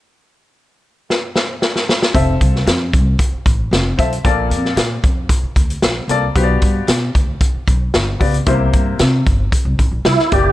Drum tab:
HH |----------------|x-x-x-x-x-x-x-xx|x-x-x-x-x-xxx-x-|x-x-x-x-x-x-x-ox|
SD |--------o-o-oooo|---oo-------o---|---oo-------o---|----o-------o---|
BD |----------------|o-o---o-o-o---o-|o-----o-o-o-----|o-o---o-o-o---o-|

HH |x-x-x-x-x-x-x-x-|
SD |----o-------oo--|
BD |o-o---o-o-o---o-|